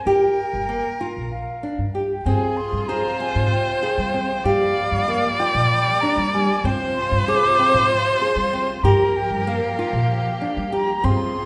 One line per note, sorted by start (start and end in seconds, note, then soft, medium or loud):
0.06 0.33 G1 medium
0.06 0.39 G4 medium
0.06 1.91 A#4 medium
0.06 1.08 G5 medium
0.53 0.80 G1 medium
0.69 0.85 A#3 medium
1.01 1.33 F4 medium
1.17 1.43 A#1 medium
1.31 1.90 F5 medium
1.63 1.79 D4 medium
1.78 2.18 G2 medium
1.94 2.11 G4 medium
1.94 2.27 G5 medium
2.25 2.52 G2 medium
2.25 4.43 C3 medium
2.25 4.43 F3 medium
2.25 2.58 C4 medium
2.25 4.43 F4 loud
2.25 2.90 G#4 loud
2.25 2.58 G#5 medium
2.57 2.90 C6 medium
2.73 2.99 G2 medium
2.88 3.05 G#4 medium
2.88 4.46 C5 loud
2.88 3.20 A#5 medium
3.20 3.52 C4 medium
3.20 3.50 G#5 medium
3.35 3.62 G#2 medium
3.51 4.47 G5 medium
3.83 3.99 G#4 medium
3.98 4.38 G3 medium
4.14 4.30 C4 medium
4.44 4.71 G2 medium
4.44 6.63 F3 medium
4.44 6.62 G3 medium
4.44 6.62 A#3 medium
4.44 4.78 G4 medium
4.44 6.67 D5 loud
4.44 5.41 F5 medium
4.92 5.18 G2 medium
5.08 5.24 A#3 medium
5.40 5.72 F4 medium
5.40 5.70 G5 medium
5.55 5.81 A#2 medium
5.71 6.02 G5 medium
6.01 6.19 D4 medium
6.01 6.33 A#5 medium
6.17 6.57 G3 medium
6.34 6.50 G3 medium
6.34 6.67 G#5 medium
6.64 6.91 G2 loud
6.64 8.82 C3 medium
6.64 8.82 F3 medium
6.64 6.97 C4 medium
6.64 8.82 F4 medium
6.64 8.86 C5 loud
6.95 7.25 C6 medium
7.12 7.38 G2 medium
7.28 7.44 G#4 medium
7.28 7.87 D6 loud
7.59 7.91 C4 medium
7.74 8.01 G#2 medium
7.90 8.85 C6 loud
8.22 8.38 G#4 medium
8.36 8.76 G3 medium
8.53 8.69 C4 medium
8.83 9.10 G2 medium
8.83 11.02 F3 medium
8.83 11.02 A#3 medium
8.83 9.17 G4 medium
8.83 11.02 G4 medium
8.83 10.73 A#4 medium
8.83 9.18 A#5 medium
9.17 9.47 G5 medium
9.31 9.57 G2 medium
9.47 9.63 A#3 medium
9.47 10.75 F5 medium
9.79 10.11 F4 medium
9.93 10.20 A#2 medium
10.42 10.58 D4 medium
10.57 10.96 G3 medium
10.72 10.89 G4 medium
10.72 11.06 A#5 medium
11.03 11.30 G2 medium
11.03 11.46 C3 medium
11.03 11.46 F3 medium
11.03 11.36 C4 medium
11.03 11.46 F4 medium
11.03 11.46 G#4 loud
11.03 11.46 C6 loud